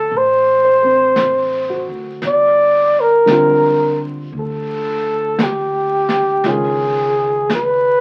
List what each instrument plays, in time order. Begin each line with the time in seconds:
Already playing: grand piano F#3 A3 C4 D4, flugelhorn A4
0.11 upright bass A1, brush sweep
0.17 flugelhorn C5
0.65 grand piano C5
0.82 grand piano A3 C4
1.16 grand piano A4, brush sweep, snare, hi-hat pedal
1.70 grand piano F#4
1.89 upright bass D2
2.22 upright bass G1, brush sweep, snare
2.27 flugelhorn D5
3.01 flugelhorn A#4
3.26 grand piano D3 G3 C4, brush sweep, snare, hi-hat pedal
3.31 grand piano F4
4.32 upright bass D2, brush sweep
4.39 flugelhorn A4
5.39 brush sweep, snare, hi-hat pedal
5.43 flugelhorn G4
6.09 snare
6.44 upright bass C#2, grand piano D#3 G#3 C#4 F4, brush sweep, snare
6.50 flugelhorn G#4
7.50 brush sweep, snare, hi-hat pedal
7.55 flugelhorn B4